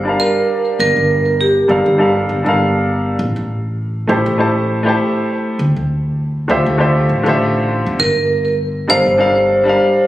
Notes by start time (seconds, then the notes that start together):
Already playing: G1
0.03 G3 D4 A5
0.08 A#4 F5
0.20 A#4
0.79 G1 A#4
0.96 G1
1.41 G4
1.68 G1 G3 D4 A4 A#4 F5
1.86 G1
1.98 G3 D4 A4 A#4 F5
2.29 G1
2.43 G1 G3 D4 A4
2.47 A#4 F5
3.19 A1
3.36 A1
4.07 A1 A3 E4 G4 C5 A5
4.26 A1
4.38 A3 E4 G4 C5 A5
4.83 A3 E4 G4
4.87 C5 A5
5.59 D2
5.76 D2
6.48 D2 D3 A3 F4 G4 C5 E5
6.66 D2
6.78 D3 A3 F4 G4 C5 E5
7.09 A1
7.23 A1 D3 A3 F4 G4
7.28 C5 E5
7.86 F2
7.99 G1 A#4
8.16 G1
8.87 G1 G3 D4 A4 A#4 C5 F5
9.06 G1
9.18 G3 D4 A4 A#4 F5
9.63 G3 D4 A5
9.68 A#4 F5